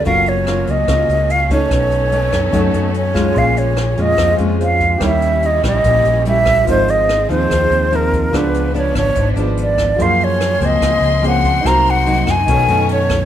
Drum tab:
HH |xxxxxxxx|xxxxxxxx|xxxxxxxx|xxxxxxxx|
SD |--r-r---|r--r---r|--r-r---|r--r---r|
BD |o---o--o|o--oo--o|o---o--o|o--oo--o|

HH |xxxxxxxx|xxxxxxxx|xxxxxxxx|xxxxxxxx|
SD |--r-r---|r--r---r|--r-r---|r--r---r|
BD |o---o--o|o--oo--o|o---o--o|o--oo--o|